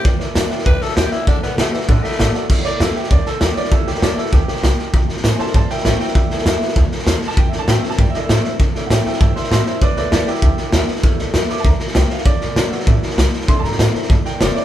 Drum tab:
CC |----------------|----------------|x---------------|----------------|
HH |----p-------p---|----p-------p---|----p-------p---|----p-------p---|
SD |o-o-o-ooo-ooo-o-|o-o-o-ooo-ooo-o-|o-o-o-ooo-o-o-oo|o-ooo-ooo-ooo-o-|
BD |o-------o-------|o-------o-------|o-------o-------|o-------o-------|

CC |----------------|----------------|----------------|----------------|
HH |----p-------p---|----p-------p---|----p-------p---|----p-------p---|
SD |o-ooo-ooo-ooo-oo|o-ooo-ooo-ooo-oo|o-o-o-ooo-o-o-o-|o-o-o-ooo-ooo-o-|
BD |o-------o-------|o-------o-------|o-------o-------|o-------o-------|

CC |----------------|----------------|----------------|----------------|
HH |----p-------p---|----p-------p---|----p-------p---|----p-------p---|
SD |o-o-o-ooo-o-o-oo|o-o-o-ooo-ooo-oo|o-o-o-ooo-ooo-oo|o-ooo-ooo-o-o-o-|
BD |o-------o-------|o-------o-------|o-------o-------|o-------o-------|